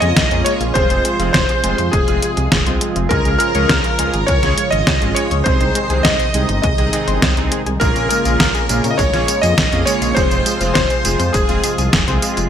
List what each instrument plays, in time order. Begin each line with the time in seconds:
Already playing: analog synth pad C#3 G#3 A#3 F4
0.00 detuned saw bass F2, synth arpeggio sound G#4, electric grand piano D#5, string machine D#5, closed hi-hat
0.17 detuned saw bass A#1, synth arpeggio sound G#3, kick, snare, closed hi-hat
0.31 detuned saw bass F2, analog polysynth A#3 C#4 F4 G#4, synth arpeggio sound C#4, closed hi-hat
0.45 synth arpeggio sound G#3, electric grand piano C#5, string machine C#5, closed hi-hat
0.61 detuned saw bass A#1, synth arpeggio sound F4, closed hi-hat
0.74 detuned saw bass F1, analog synth pad C3 F3, analog polysynth G#3 C4 F4 G#4, synth arpeggio sound G#3, electric grand piano C5, string machine C5, kick, closed hi-hat
0.90 detuned saw bass F1, synth arpeggio sound C5, closed hi-hat
1.05 synth arpeggio sound G#3, closed hi-hat
1.19 detuned saw bass F1, analog polysynth G#3 C4 F4 G#4, synth arpeggio sound F4, closed hi-hat
1.33 detuned saw bass F1, synth arpeggio sound G#3, electric grand piano C5, string machine C5, kick, snare, closed hi-hat
1.49 synth arpeggio sound G#4, closed hi-hat
1.64 detuned saw bass F1, analog polysynth G#3 C4 F4 G#4, synth arpeggio sound G#3, closed hi-hat
1.78 detuned saw bass F2, synth arpeggio sound C5, closed hi-hat
1.91 detuned saw bass F1, synth arpeggio sound G#3, electric grand piano G#4, string machine G#4, kick, closed hi-hat
2.08 detuned saw bass F1, analog polysynth G#3 C4 F4 G#4, synth arpeggio sound F4, closed hi-hat
2.22 synth arpeggio sound G#3, closed hi-hat
2.37 detuned saw bass C2, synth arpeggio sound G#4, closed hi-hat
2.52 detuned saw bass F1, synth arpeggio sound G#3, kick, snare, closed hi-hat
2.66 detuned saw bass C2, analog polysynth G#3 C4 F4 G#4, synth arpeggio sound C5, closed hi-hat
2.81 synth arpeggio sound G#3, closed hi-hat
2.96 detuned saw bass F1, synth arpeggio sound F4, closed hi-hat
3.09 detuned saw bass C#2, analog synth pad C#3 F4, analog polysynth G#3 C#4 F4 G#4, synth arpeggio sound G#3, electric grand piano A#4, string machine A#4, kick, closed hi-hat
3.25 detuned saw bass C#2, synth arpeggio sound G#4, closed hi-hat
3.38 synth arpeggio sound G#3, electric grand piano A#4, string machine A#4, closed hi-hat
3.55 detuned saw bass C#2, analog polysynth G#3 C#4 F4 G#4, synth arpeggio sound C#5, closed hi-hat
3.69 detuned saw bass C#2, synth arpeggio sound G#3, kick, snare, closed hi-hat
3.84 synth arpeggio sound F4, closed hi-hat
3.99 detuned saw bass C#2, synth arpeggio sound G#3, analog polysynth G#3 C#4 F4 G#4, closed hi-hat
4.14 detuned saw bass G#1, synth arpeggio sound G#4, closed hi-hat
4.27 detuned saw bass C#2, synth arpeggio sound G#3, electric grand piano C#5, string machine C#5, kick, closed hi-hat
4.43 detuned saw bass C#2, analog polysynth G#3 C#4 F4 G#4, synth arpeggio sound C#5, snare, closed hi-hat
4.58 synth arpeggio sound G#3, closed hi-hat
4.71 detuned saw bass G#1, synth arpeggio sound F4, electric grand piano D#5, string machine D#5, closed hi-hat
4.87 detuned saw bass C#2, synth arpeggio sound G#3, kick, snare, closed hi-hat
5.02 detuned saw bass G#1, analog polysynth G#3 C#4 F4 G#4, synth arpeggio sound G#4, closed hi-hat
5.15 synth arpeggio sound G#3, electric grand piano C#5, string machine C#5, closed hi-hat
5.31 detuned saw bass C#2, synth arpeggio sound C#5, closed hi-hat
5.44 detuned saw bass C2, analog synth pad C3 D#3 D#4, synth arpeggio sound G#3, analog polysynth G#3 C4 D#4 G#4, electric grand piano C5, string machine C5, kick, closed hi-hat
5.61 detuned saw bass C2, synth arpeggio sound D#4, closed hi-hat
5.75 synth arpeggio sound G#3, closed hi-hat
5.90 detuned saw bass C2, analog polysynth G#3 C4 D#4 G#4, synth arpeggio sound G#4, closed hi-hat
6.03 detuned saw bass C2, synth arpeggio sound G#3, string machine D#5, electric grand piano D#5, kick, snare, closed hi-hat
6.19 synth arpeggio sound C5, closed hi-hat
6.34 detuned saw bass C2, synth arpeggio sound G#3, analog polysynth G#3 C4 D#4 G#4, closed hi-hat
6.49 detuned saw bass G1, synth arpeggio sound D#4, closed hi-hat
6.62 detuned saw bass C2, synth arpeggio sound G#3, string machine D#5, electric grand piano D#5, kick, closed hi-hat
6.78 detuned saw bass C2, analog polysynth G#3 C4 D#4 G#4, synth arpeggio sound G#4, closed hi-hat
6.93 synth arpeggio sound G#3, analog polysynth G#3 C4 D#4 G#4, closed hi-hat
7.08 detuned saw bass G1, synth arpeggio sound C5, closed hi-hat
7.22 detuned saw bass C2, synth arpeggio sound G#3, kick, snare, closed hi-hat
7.37 detuned saw bass C2, analog polysynth G#3 C4 D#4 G#4, synth arpeggio sound D#4, closed hi-hat
7.52 synth arpeggio sound G#3, closed hi-hat
7.66 detuned saw bass C2, synth arpeggio sound G#4, closed hi-hat
7.79 detuned saw bass A#1, analog synth pad C#3 A#3 F4, synth arpeggio sound G#3, analog polysynth A#3 C#4 F4 G#4, string machine A#4, electric grand piano A#4, kick, closed hi-hat, tambourine
7.96 detuned saw bass A#1, synth arpeggio sound C#4, closed hi-hat, tambourine
8.09 synth arpeggio sound G#3, string machine A#4, electric grand piano A#4, closed hi-hat, tambourine
8.25 detuned saw bass A#1, analog polysynth A#3 C#4 F4 G#4, synth arpeggio sound F4, closed hi-hat, tambourine
8.40 detuned saw bass A#1, synth arpeggio sound G#3, kick, snare, closed hi-hat, tambourine
8.55 synth arpeggio sound G#4, closed hi-hat, tambourine
8.69 detuned saw bass A#1, synth arpeggio sound G#3, analog polysynth A#3 C#4 F4 G#4, closed hi-hat, tambourine
8.84 detuned saw bass A#2, synth arpeggio sound C#4, closed hi-hat, tambourine
8.90 string machine D#5, electric grand piano D#5
8.97 detuned saw bass A#1, synth arpeggio sound G#3, string machine C#5, electric grand piano C#5, kick, closed hi-hat, tambourine
9.14 detuned saw bass A#1, analog polysynth A#3 C#4 F4 G#4, synth arpeggio sound F4, snare, closed hi-hat, tambourine
9.28 synth arpeggio sound G#3, closed hi-hat, tambourine
9.41 detuned saw bass F2, synth arpeggio sound G#4, string machine D#5, electric grand piano D#5, closed hi-hat, tambourine
9.58 detuned saw bass A#1, synth arpeggio sound G#3, kick, snare, closed hi-hat, tambourine
9.72 detuned saw bass F2, analog polysynth A#3 C#4 F4 G#4, synth arpeggio sound C#4, closed hi-hat, tambourine
9.85 synth arpeggio sound G#3, string machine C#5, electric grand piano C#5, closed hi-hat, tambourine
10.02 detuned saw bass A#1, synth arpeggio sound F4, closed hi-hat, tambourine
10.15 detuned saw bass F1, analog synth pad C3 F3, synth arpeggio sound G#3, analog polysynth G#3 C4 F4 G#4, electric grand piano C5, string machine C5, kick, closed hi-hat, tambourine
10.31 detuned saw bass F1, synth arpeggio sound C5, closed hi-hat, tambourine
10.46 synth arpeggio sound G#3, closed hi-hat, tambourine
10.61 detuned saw bass F1, analog polysynth G#3 C4 F4 G#4, synth arpeggio sound F4, closed hi-hat, tambourine
10.74 detuned saw bass F1, synth arpeggio sound G#3, string machine C5, electric grand piano C5, kick, snare, closed hi-hat, tambourine
10.90 synth arpeggio sound G#4, closed hi-hat, tambourine
11.05 detuned saw bass F1, analog polysynth G#3 C4 F4 G#4, synth arpeggio sound G#3, closed hi-hat, tambourine
11.19 detuned saw bass F2, synth arpeggio sound C5, closed hi-hat, tambourine
11.33 detuned saw bass F1, synth arpeggio sound G#3, string machine G#4, electric grand piano G#4, kick, closed hi-hat, tambourine
11.49 detuned saw bass F1, analog polysynth G#3 C4 F4 G#4, synth arpeggio sound F4, closed hi-hat, tambourine
11.64 synth arpeggio sound G#3, closed hi-hat, tambourine
11.78 detuned saw bass C2, synth arpeggio sound G#4, closed hi-hat, tambourine
11.93 detuned saw bass F1, synth arpeggio sound G#3, kick, snare, closed hi-hat, tambourine
12.08 detuned saw bass C2, analog polysynth G#3 C4 F4 G#4, synth arpeggio sound C5, closed hi-hat, tambourine
12.22 synth arpeggio sound G#3, closed hi-hat, tambourine
12.37 detuned saw bass F1, synth arpeggio sound F4, closed hi-hat, tambourine